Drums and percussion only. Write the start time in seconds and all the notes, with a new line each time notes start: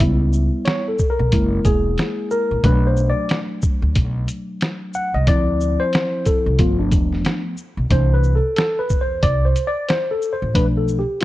0.00 kick, closed hi-hat
0.33 shaker
0.65 snare, closed hi-hat
0.98 kick, shaker
1.32 kick, closed hi-hat
1.65 kick, closed hi-hat, shaker
1.98 snare, closed hi-hat
2.31 shaker
2.64 kick, closed hi-hat
2.97 shaker
3.29 snare, closed hi-hat
3.62 kick, shaker
3.95 kick, closed hi-hat
4.28 closed hi-hat, shaker
4.61 snare, closed hi-hat
4.94 shaker
5.27 kick, closed hi-hat
5.61 shaker
5.93 snare, closed hi-hat
6.26 kick, closed hi-hat, shaker
6.59 kick, closed hi-hat
6.92 kick, closed hi-hat, shaker
7.13 snare
7.25 snare, closed hi-hat
7.57 shaker
7.90 kick, closed hi-hat
8.23 shaker
8.56 snare, closed hi-hat
8.89 kick, shaker
9.23 kick, closed hi-hat
9.56 closed hi-hat, shaker
9.89 snare, closed hi-hat
10.22 shaker
10.55 kick, closed hi-hat
10.88 shaker
11.21 closed hi-hat